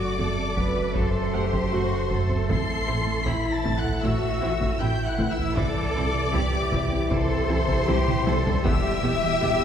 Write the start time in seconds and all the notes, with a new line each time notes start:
Already playing: F#1 F#2 A3 F#4 A4 D5 D6
0.00 F#3
0.18 F#2 A3 C4 F#4 A4, taiko low
0.38 C4
0.55 F#2 F#3 A3 F#4 B4, taiko
0.76 F#4, taiko low
0.95 F#2 F#3 A3 F#4 A4 C5 C6, taiko
1.34 F#2 A3 G4 F#5
1.53 F#3, taiko
1.72 F#2 A3 F#4
2.11 F#2 F#3 A3 F#4 A4, taiko
2.30 C4, taiko low
2.49 A1 A2 E3 A3 C4 E4 C6 C7, taiko
2.69 C4
2.87 A1 C4 E4 A4
3.07 A3
3.26 A1 C4 E4 B5 B6, taiko low
3.46 E4
3.52 A5 A6
3.64 A1 A3 C4 E4, taiko
3.78 F#5 F#6
3.84 A4, taiko low
4.03 A1 A3 C4 E4 F#4 E5 E6, taiko
4.41 A1 C4 E4
4.61 A3, taiko
4.80 A1 C4 E4 A4 G5 G6
5.06 F#5 F#6
5.18 A1 A3 C4 E4, taiko
5.31 E5 E6
5.38 E4, taiko low
5.56 C2 C3 G3 C4 E4 A4 D5 D6, taiko
5.76 E3
5.95 C2 C4 E4
6.14 C3
6.33 C2 G3 C4 E4 G4, taiko low
6.53 G3
6.72 C2 C3 C4 E4, taiko
6.92 C4, taiko low
7.11 C2 C3 C4 E4 A4 C5 C6, taiko
7.49 C2 E3 C4 E4
7.68 C3, taiko
7.87 C2 C4 E4 G4, taiko high
8.08 taiko mid
8.26 C2 C3 C4 E4 A4, taiko high
8.46 G3, taiko low
8.64 E1 B2 E3 B3 E4 G4 E5 E6, taiko
8.84 G3
9.03 E1 B3 E4 G4
9.23 E3
9.42 E1 B3 G4, taiko low